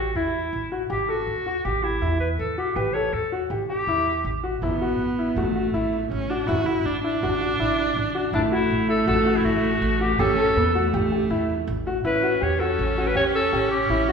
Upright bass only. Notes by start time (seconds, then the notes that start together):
Already playing: A1
0.15 E2
0.53 A1
0.90 A1
1.27 E2
1.65 A1
2.02 E2
2.39 A1
2.76 A1
3.13 E2
3.50 A1
3.87 E2
4.25 A1
4.62 A1
4.99 A1
5.36 A1
5.74 A1
6.11 A1
6.48 A1
6.86 A1
7.23 A1
7.60 A1
7.97 A1
8.33 A1
8.71 A1
9.07 A1
9.46 A1
9.82 A1
10.19 A1
10.56 E2
10.94 A1
11.30 E2
11.67 A1
12.05 A1
12.42 E2
12.79 A1
13.15 E2
13.53 A1
13.89 A1